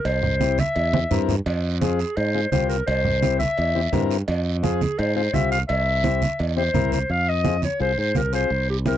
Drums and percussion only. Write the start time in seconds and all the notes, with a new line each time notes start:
0.05 cowbell, high conga, long guiro
0.23 low conga
0.41 high conga, short guiro
0.58 high conga, short guiro
0.76 cowbell, long guiro
0.94 high conga
1.11 low conga, short guiro
1.29 low conga, short guiro
1.46 cowbell, high conga, long guiro
1.81 high conga, short guiro
1.99 short guiro
2.17 cowbell, long guiro
2.35 high conga
2.52 high conga, short guiro
2.70 short guiro
2.87 cowbell, high conga, long guiro
3.05 low conga
3.23 high conga, short guiro
3.40 high conga, short guiro
3.57 cowbell, long guiro
3.75 high conga
3.93 high conga, low conga, low timbale, short guiro
4.11 short guiro
4.28 cowbell, high conga, long guiro
4.64 high conga, short guiro
4.81 high conga, short guiro
4.99 cowbell, long guiro
5.16 high conga
5.34 high conga, short guiro
5.52 short guiro
5.69 cowbell, high conga, long guiro
6.04 high conga, short guiro
6.22 high conga, short guiro
6.39 cowbell, long guiro
6.57 high conga
6.74 high conga, low conga, short guiro
6.92 high conga, short guiro
7.10 high conga, long guiro
7.44 high conga, short guiro
7.62 high conga, short guiro
7.80 long guiro
7.98 high conga
8.15 high conga, short guiro
8.33 short guiro
8.50 high conga, long guiro
8.86 high conga, short guiro